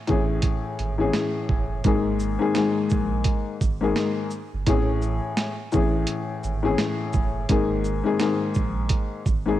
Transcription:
0.07 A1 A2 E3 C#4 G#4, kick, closed hi-hat
0.42 kick, closed hi-hat
0.79 G#1, closed hi-hat
0.98 A2 E3 C#4 G#4
1.14 snare, closed hi-hat
1.49 F#1, kick
1.84 G#1 G#2 D#3 A#3 G#4, kick, closed hi-hat
2.20 shaker
2.39 G#2 D#3 A#3 G#4
2.54 G#2 D#3 A#3 G#4, snare, closed hi-hat
2.90 A#1, kick, shaker
3.24 kick, closed hi-hat
3.61 G#1, kick, shaker
3.81 G#2 D#3 A#3 G#4
3.96 snare, closed hi-hat
4.31 shaker
4.54 G1
4.66 A1 A2 E3 C#4 G#4, kick, closed hi-hat
5.02 shaker
5.37 snare, closed hi-hat
5.72 A1 A2 E3 C#4 G#4, kick, shaker
6.07 closed hi-hat
6.44 G#1, shaker
6.63 A2 E3 C#4 G#4
6.78 snare, closed hi-hat
7.13 F#1, kick, shaker
7.49 G#1 G#2 D#3 A#3 G#4, kick, closed hi-hat
7.84 shaker
8.04 G#2 D#3 A#3 G#4
8.19 G#2 D#3 A#3 G#4, snare, closed hi-hat
8.54 A#1, kick, shaker
8.89 kick, closed hi-hat
9.26 G#1, kick, shaker
9.46 G#2 D#3 A#3 G#4

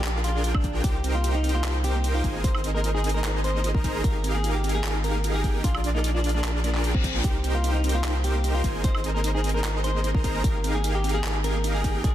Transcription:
Already playing: A#1 D4 F4 G4 G#4 A#4 D5
0.04 G#4, clap, closed hi-hat
0.15 F4
0.24 F4, closed hi-hat
0.35 G#4
0.44 D4 F4 G#4 A#4 G5, closed hi-hat
0.55 D4, kick, high woodblock
0.64 D5, kick, closed hi-hat
0.75 F4
0.84 C2 G4, kick, closed hi-hat
0.95 D#4
1.04 C4, closed hi-hat
1.15 A#3 F4
1.24 G4, closed hi-hat
1.35 D#4
1.44 C4, closed hi-hat
1.49 closed hi-hat
1.55 A#3 F4
1.64 G4, clap, closed hi-hat
1.74 D#4
1.84 C4 G4, closed hi-hat
1.94 A#3
2.04 G4, closed hi-hat
2.15 D#4 F4
2.24 G#1 D#4 G#4 A#4 C5 G#5, kick, closed hi-hat
2.35 A#3
2.44 D#4 F4 A#4 C5 D#5, kick, closed hi-hat
2.55 D#4, high woodblock
2.64 C4, closed hi-hat
2.75 A#3 A#4
2.84 F4, closed hi-hat
2.94 D#4 G#4
3.04 C4, closed hi-hat
3.09 closed hi-hat
3.14 A#3 A#4
3.24 F4, clap, closed hi-hat
3.35 D#4
3.44 C4 C5, closed hi-hat
3.54 A#3
3.64 F4, closed hi-hat
3.74 D#4 A#4, kick
3.84 C4 D#4 G#4 A#4 C5 A#5, kick, closed hi-hat
3.94 A#3
4.04 G#1 D#4 F4 G4 G#4 A#4 F5, kick, closed hi-hat
4.14 D#4
4.24 C4, closed hi-hat
4.34 A#3 G#4
4.44 F4, closed hi-hat
4.54 D#4 G4
4.64 C4, closed hi-hat
4.69 closed hi-hat
4.74 A#3 G#4
4.84 F4, clap, closed hi-hat
4.94 D#4
5.04 C4 A#4, closed hi-hat
5.14 A#3
5.24 F4, closed hi-hat
5.34 D#4 G#4
5.44 D#4 G4 G#4 A#4 G5, kick, closed hi-hat
5.54 A#3
5.64 A#1 D4 F4 G#4 A#4 D5, kick, closed hi-hat
5.74 F4, high woodblock
5.84 D4, closed hi-hat
5.95 A#3 D#4
6.04 G#4, closed hi-hat
6.15 D4 F4
6.24 D4, closed hi-hat
6.29 closed hi-hat
6.35 A#3 D4
6.44 G#4, clap, closed hi-hat, reverse cymbal
6.55 F4
6.64 A#3 D4, closed hi-hat
6.75 D4, clap
6.84 D4 F4 G#4 A#4 G5, closed hi-hat
6.94 C4 G#4, kick
7.04 D4, kick, closed hi-hat
7.14 A#3
7.24 C2 D#4 G4, kick, closed hi-hat
7.35 D#4
7.44 C4, closed hi-hat
7.55 A#3 F4
7.64 D#4, closed hi-hat
7.74 D#4
7.84 C4, closed hi-hat
7.89 closed hi-hat
7.95 A#3 F4
8.04 G4, clap, closed hi-hat
8.15 D#4
8.24 C4 G4, closed hi-hat
8.35 A#3
8.44 D#4, closed hi-hat
8.54 D#4 F4
8.64 G#1 C4 D#4 G#4 A#4 C5 G#5, kick, closed hi-hat
8.75 A#3
8.84 D#4 F4 G#4 A#4 C5 D#5, kick, closed hi-hat
8.95 D#4, high woodblock
9.04 C4, closed hi-hat
9.14 A#3 A#4
9.24 D#4, closed hi-hat
9.35 D#4 G#4
9.44 C4, closed hi-hat
9.49 closed hi-hat
9.54 A#3 A#4
9.64 F4, clap, closed hi-hat
9.75 D#4
9.84 C4 C5, closed hi-hat
9.94 A#3
10.04 D#4, closed hi-hat
10.14 D#4 A#4, kick
10.24 C4 D#4 G#4 A#4 C5 A#5, kick, closed hi-hat
10.34 A#3
10.44 G#1 F4 G4 G#4 A#4 F5, kick, closed hi-hat
10.54 D#4
10.64 C4, closed hi-hat
10.74 A#3 G#4
10.84 D#4, closed hi-hat
10.94 D#4 G4
11.04 C4, closed hi-hat
11.09 closed hi-hat
11.15 A#3 G#4
11.24 F4, clap, closed hi-hat
11.35 D#4
11.44 C4 A#4, closed hi-hat
11.55 A#3
11.64 D#4, closed hi-hat
11.74 D#4 G#4
11.84 C4 D#4 G4 G#4 A#4 G5, kick, closed hi-hat
11.94 A#3
12.04 A#1 D4 F4 G#4 A#4 D5, kick, closed hi-hat

